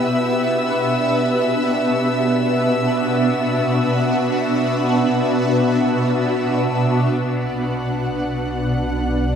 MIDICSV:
0, 0, Header, 1, 4, 480
1, 0, Start_track
1, 0, Tempo, 500000
1, 8981, End_track
2, 0, Start_track
2, 0, Title_t, "Violin section"
2, 0, Program_c, 0, 48
2, 0, Note_on_c, 0, 76, 78
2, 0, Note_on_c, 0, 88, 79
2, 7109, Note_on_c, 0, 90, 65
2, 7115, Note_on_c, 0, 78, 65
2, 7160, Note_off_c, 0, 88, 0
2, 7164, Note_off_c, 0, 76, 0
2, 8981, Note_off_c, 0, 78, 0
2, 8981, Note_off_c, 0, 90, 0
2, 8981, End_track
3, 0, Start_track
3, 0, Title_t, "Ambient pad"
3, 0, Program_c, 1, 92
3, 0, Note_on_c, 1, 47, 85
3, 0, Note_on_c, 1, 59, 69
3, 0, Note_on_c, 1, 62, 80
3, 0, Note_on_c, 1, 67, 69
3, 0, Note_on_c, 1, 71, 78
3, 1276, Note_on_c, 1, 66, 69
3, 1575, Note_off_c, 1, 67, 0
3, 8658, Note_off_c, 1, 66, 0
3, 8981, Note_off_c, 1, 47, 0
3, 8981, Note_off_c, 1, 59, 0
3, 8981, Note_off_c, 1, 62, 0
3, 8981, Note_off_c, 1, 71, 0
3, 8981, End_track
4, 0, Start_track
4, 0, Title_t, "Sub bass"
4, 0, Program_c, 2, 38
4, 7129, Note_on_c, 2, 35, 78
4, 8981, Note_off_c, 2, 35, 0
4, 8981, End_track
0, 0, End_of_file